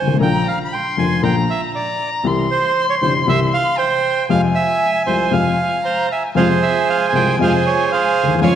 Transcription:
0.00 0.08 G1 soft
0.00 0.17 C5 medium
0.00 0.16 G#5 medium
0.08 0.14 G#1 medium
0.14 0.20 A1 medium
0.21 0.42 A#1 medium
0.21 0.42 A#2 medium
0.21 0.42 D3 medium
0.21 0.42 F3 medium
0.21 0.42 A#3 medium
0.21 0.42 F4 medium
0.21 0.48 G5 medium
0.21 0.62 A#5 medium
0.48 0.59 F5 medium
0.65 0.75 B5 medium
0.73 0.96 G5 medium
0.73 1.25 C6 medium
0.97 1.18 F1 soft
0.97 1.19 F2 medium
0.97 1.19 D3 soft
0.97 1.19 F3 soft
0.97 1.19 A#3 soft
0.97 1.19 F4 soft
0.97 1.22 G#5 medium
1.22 1.44 A#1 medium
1.22 1.44 A#2 medium
1.22 1.44 D3 medium
1.22 1.44 F3 medium
1.22 1.44 A#3 medium
1.22 1.44 F4 medium
1.22 1.35 G5 medium
1.22 1.74 A#5 medium
1.50 1.61 E5 medium
1.74 2.10 D5 medium
1.74 2.28 A#5 medium
2.24 2.46 C2 medium
2.24 2.46 C3 medium
2.24 2.46 E3 medium
2.24 2.46 G3 medium
2.24 2.46 E4 medium
2.24 3.78 C6 medium
2.51 2.86 C5 medium
2.90 2.95 C#5 medium
3.01 3.23 G1 medium
3.01 3.23 G2 medium
3.01 3.23 C3 soft
3.01 3.23 E3 soft
3.01 3.23 G3 soft
3.01 3.23 E4 soft
3.01 3.13 C5 medium
3.27 3.48 C2 medium
3.27 3.49 C3 medium
3.27 3.48 E3 medium
3.27 3.49 G3 medium
3.27 3.49 E4 medium
3.27 3.40 E5 medium
3.54 3.77 F5 medium
3.77 4.26 C5 medium
3.77 4.29 G5 medium
4.29 4.51 F2 medium
4.29 4.51 C3 medium
4.29 4.51 F3 medium
4.29 4.51 G#3 medium
4.29 4.51 F4 medium
4.29 4.41 F5 medium
4.29 5.80 G#5 medium
4.55 5.03 E5 medium
5.07 5.28 C2 soft
5.07 5.28 C3 soft
5.07 5.28 F3 soft
5.07 5.28 G#3 soft
5.07 5.28 F4 soft
5.07 5.33 C5 medium
5.31 5.53 F2 medium
5.31 5.53 C3 medium
5.31 5.53 F3 medium
5.31 5.53 G#3 medium
5.31 5.54 F4 medium
5.31 6.07 F5 medium
5.84 6.09 C5 medium
5.84 6.13 A#5 medium
6.12 6.23 E5 medium
6.12 6.36 G#5 medium
6.35 6.58 F2 medium
6.35 6.58 C3 medium
6.35 6.58 F3 medium
6.35 6.58 G#3 medium
6.35 6.58 C4 medium
6.35 6.58 F4 medium
6.35 6.59 F4 medium
6.35 7.36 G#4 medium
6.35 7.36 C5 medium
6.35 6.48 F5 medium
6.35 8.38 G#5 medium
6.63 6.89 E5 medium
6.90 7.07 F5 medium
7.09 7.35 C3 soft
7.09 7.35 F3 soft
7.09 7.35 G#3 soft
7.09 7.15 G#5 medium
7.13 7.35 C2 soft
7.13 7.36 G#3 soft
7.13 7.36 C4 soft
7.13 7.35 F4 soft
7.13 7.36 F4 soft
7.13 7.39 G5 medium
7.38 7.61 F2 medium
7.38 7.61 C3 medium
7.38 7.61 F3 medium
7.38 7.61 G#3 medium
7.38 7.62 G#3 medium
7.38 7.62 C4 medium
7.38 7.61 F4 medium
7.38 7.62 F4 medium
7.38 7.53 F5 medium
7.43 7.92 G#4 medium
7.43 7.92 C5 medium
7.66 7.90 C#5 medium
7.92 8.40 G#4 medium
7.92 8.40 C5 medium
7.92 8.39 F5 medium
8.23 8.30 D2 soft
8.28 8.35 D#2 medium
8.35 8.42 E2 medium
8.41 8.55 F2 medium
8.41 8.55 C#3 medium
8.41 8.55 F3 medium
8.41 8.55 G#3 medium
8.41 8.55 C#4 medium
8.41 8.55 F4 medium
8.41 8.55 C#5 medium
8.41 8.55 F5 medium
8.41 8.55 G#5 medium

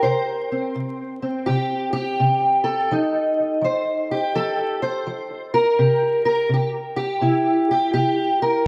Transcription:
0.00 0.71 C3 medium
0.00 0.51 C4 medium
0.00 0.74 A#4 medium
0.00 1.46 C5 medium
0.52 1.22 C4 soft
0.75 1.42 C3 medium
1.22 2.92 C4 medium
1.46 2.15 C3 medium
1.46 1.91 G4 medium
1.93 2.91 G4 medium
2.20 2.86 C3 medium
2.64 4.34 A4 medium
2.91 3.58 F3 medium
2.91 5.76 D#4 medium
3.61 4.29 F3 medium
3.61 4.10 C5 medium
4.11 4.82 G4 medium
4.35 5.02 F3 medium
4.35 5.53 A4 medium
4.82 5.53 C5 medium
5.07 5.73 F3 medium
5.54 6.24 A#4 loud
5.79 6.45 C3 medium
5.79 6.54 G4 medium
6.25 6.51 A#4 medium
6.49 7.17 C3 medium
6.54 6.70 G4 medium
6.96 7.69 G4 medium
7.21 7.89 C3 medium
7.21 8.63 E4 medium
7.71 7.92 G4 medium
7.94 8.61 C3 medium
7.94 8.40 G4 medium
8.42 8.67 A#4 loud

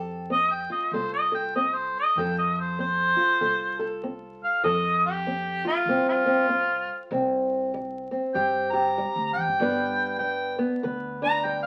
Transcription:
0.00 0.66 F2 loud
0.00 0.26 F3 medium
0.00 0.30 C4 medium
0.00 0.92 A4 medium
0.30 0.87 C4 medium
0.30 0.54 D#5 loud
0.52 0.71 G5 medium
0.70 3.16 F4 medium
0.70 0.95 D#5 medium
0.92 1.89 C2 medium
0.92 1.50 C3 medium
0.92 1.31 A4 medium
0.92 1.13 C5 medium
1.13 1.33 D#5 loud
1.32 2.19 A4 medium
1.32 1.54 G5 medium
1.56 2.12 C4 medium
1.56 1.76 D#5 medium
1.75 1.94 C5 medium
1.99 2.21 D#5 loud
2.16 3.13 F2 loud
2.16 2.74 F3 medium
2.16 3.41 A4 medium
2.16 2.37 G5 loud
2.38 2.62 D#5 medium
2.60 2.79 C5 medium
2.79 3.35 C4 medium
2.79 3.98 C5 loud
3.16 4.61 F4 medium
3.41 4.38 C2 medium
3.41 3.97 C3 medium
3.41 3.77 A4 medium
3.79 4.61 A4 medium
4.04 4.59 C4 medium
4.44 4.63 F5 medium
4.64 5.61 F2 loud
4.64 5.20 F3 medium
4.64 7.08 A4 medium
4.64 5.03 D#5 loud
5.06 5.65 G4 medium
5.27 5.83 C4 medium
5.65 7.09 F4 medium
5.65 6.07 F4 medium
5.86 6.84 C2 loud
5.86 6.44 C3 medium
5.86 6.25 C4 medium
6.08 7.08 F4 loud
6.26 6.48 C4 medium
6.49 7.06 C4 medium
7.11 8.08 C2 loud
7.11 7.68 C3 medium
7.11 8.10 C4 medium
7.74 8.30 G3 medium
8.11 9.56 C4 medium
8.34 8.91 G2 medium
8.34 8.98 G2 medium
8.34 8.73 G4 medium
8.34 8.73 G5 medium
8.71 9.62 G4 medium
8.71 9.32 A#5 loud
8.98 9.54 G3 medium
9.16 9.32 D2 medium
9.33 9.46 E2 medium
9.33 10.17 G5 loud
9.47 9.58 G2 medium
9.59 10.57 G1 loud
9.59 10.16 G2 medium
9.59 10.19 G3 medium
9.59 10.58 B3 medium
9.59 11.21 D4 medium
9.59 10.84 B4 medium
10.19 10.77 G3 medium
10.19 10.56 G5 loud
10.59 11.66 B3 medium
10.83 11.66 D2 medium
10.83 11.40 D3 medium
10.83 11.66 B4 medium
11.22 11.66 D4 medium
11.22 11.46 A#5 loud
11.45 11.66 G3 medium
11.45 11.62 G5 loud
11.63 11.66 F5 loud

